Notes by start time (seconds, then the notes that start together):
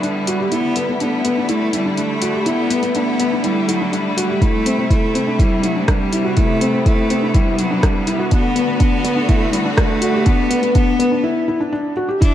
Already playing: D3 G3 B3 E4
0.02 G3 D4, closed hi-hat
0.27 F#4, closed hi-hat
0.40 G4
0.51 E1 A3 B3 E4, closed hi-hat
0.76 B3, closed hi-hat
0.89 B3
1.00 B3 D4, closed hi-hat
1.24 G1 B3, closed hi-hat
1.37 D4
1.49 A3 E4, closed hi-hat
1.73 G3 E4, closed hi-hat
1.86 D4
1.97 A3 D4, closed hi-hat
2.21 E1 F#4, closed hi-hat
2.34 G4
2.46 B3 E4, closed hi-hat
2.70 B3, closed hi-hat
2.83 B3, closed hi-hat
2.95 B3 D4, closed hi-hat
3.19 G1 B3, closed hi-hat
3.32 D4
3.44 G3 E4, closed hi-hat
3.68 F#3 E4, closed hi-hat
3.80 D4
3.92 G3 D4, closed hi-hat
4.17 F#4, closed hi-hat
4.30 G4
4.41 C3 A3 E4, kick, closed hi-hat
4.66 C4, closed hi-hat
4.79 C4
4.90 A3 E4, kick, closed hi-hat
5.15 C2 C4, closed hi-hat
5.27 D4
5.39 G3 E4, kick, closed hi-hat
5.63 F#3 E4, closed hi-hat
5.76 D4
5.81 A3
5.88 G3 D4, kick, cross-stick, closed hi-hat
6.13 E4, closed hi-hat
6.25 F#4
6.37 A3 B3 E4, kick, closed hi-hat
6.61 C4, closed hi-hat
6.74 C4
6.86 A3 E4, kick, closed hi-hat
7.09 C2 C4, closed hi-hat
7.22 D4
7.34 G3 E4, kick, closed hi-hat
7.59 F#3 E4, closed hi-hat
7.71 D4
7.83 G3 D4, kick, cross-stick, closed hi-hat
8.07 E4, closed hi-hat
8.19 F#4
8.31 D3 A3 B3 D4 F#4, kick, closed hi-hat
8.56 B3, closed hi-hat
8.68 B3
8.80 B3 D4, kick, closed hi-hat
9.04 D2 B3, closed hi-hat
9.16 D4
9.28 A3 E4, kick, closed hi-hat
9.52 G3 E4, closed hi-hat
9.65 D4
9.77 A3 D4, kick, cross-stick, closed hi-hat
10.01 F#4, closed hi-hat
10.14 G4
10.26 B3 D4, kick, closed hi-hat
10.50 B3, closed hi-hat
10.63 B3, closed hi-hat
10.75 B3 D4, kick, closed hi-hat
10.99 B3, closed hi-hat
11.12 D4
11.24 E4
11.48 E4
11.60 D4
11.72 D4
11.97 F#4
12.09 G4
12.21 E1 D4 E4 G4 E5 B5, kick, closed hi-hat